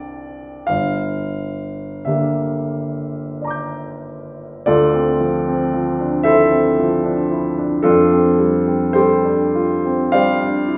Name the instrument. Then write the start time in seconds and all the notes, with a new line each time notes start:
grand piano
Already playing: E3 C4 D4 G4 D5 G5
0.67 G1 F5
2.05 D3 A#3 D4 G4 E5
3.41 D5 A#5
3.47 D6 G6
4.66 D2 F4 A4 D5
4.94 C4
5.20 F3
5.47 C4
5.74 F3
6.00 D4
6.23 E4 A4 C5 E5
6.51 C4
6.79 F3
7.05 D4
7.32 E4
7.58 D4
7.83 F2 D4 F4 A4
8.12 C4
8.39 G3
8.67 C4
8.93 G3 G4 A4 C5
9.24 D4
9.55 F4
9.85 C4
10.12 G3 C5 D5 F5
10.41 D4
10.68 E4